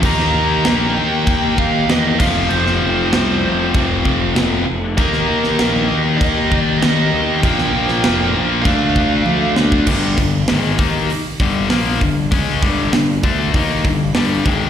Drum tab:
CC |x---x---x---x-x-|x---x---x---x---|x---x---x---x---|x---x---x-------|
HH |----------------|----------------|----------------|----------------|
SD |-o--o-------o---|-o--o-------o---|-o-oo-------o---|-o-oo---------o-|
T1 |----------------|----------------|----------------|------------o---|
BD |o-------o-o---o-|--------o-o-----|o-------o-o-----|o-------o-o----o|

CC |x---------------|----------------|
HH |--o-o-o-o-o-o-o-|o-o-o-o-o-o-o-o-|
SD |--o-o-------o---|----o-------o---|
T1 |----------------|----------------|
BD |o-o---o---o---o-|o-o---o-o-o---o-|